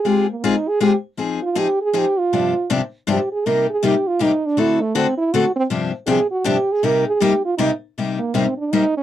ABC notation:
X:1
M:3/4
L:1/16
Q:"Swing" 1/4=159
K:Cm
V:1 name="French horn"
G2 B,2 E2 A2 G2 z2 | z2 F2 G2 A2 G2 F2- | F4 z4 G2 A2 | B2 A2 G2 F2 E2 D2 |
=E2 =A,2 C2 E2 ^F2 C2 | z4 A2 ^F2 G2 A2 | B2 A2 G2 F2 E2 z2 | z2 B,2 C2 D2 E2 _D2 |]
V:2 name="Steel-string acoustic guitar"
[A,CFA]2 z2 [A,CFA] z3 [A,CFA] z3 | [F,CEA]2 z2 [F,CEA] z3 [F,CEA] z3 | [G,,C,F,CDG]2 z2 [G,,C,F,CDG] z3 [G,,C,F,CDG] z3 | [C,G,B,EG]2 z2 [C,G,B,EG] z3 [C,G,B,EG] z3 |
[D,=A,C^F=A]2 z2 [D,A,CFA] z3 [D,A,CFA] z3 | [G,,C,F,CDG]2 z2 [G,,C,F,CDG] z3 [G,,C,F,CDG] z3 | [C,G,B,EG]2 z2 [C,G,B,EG] z3 [C,G,B,EG] z3 | [C,G,B,EG]2 z2 [C,G,B,EG] z3 [C,G,B,EG] z3 |]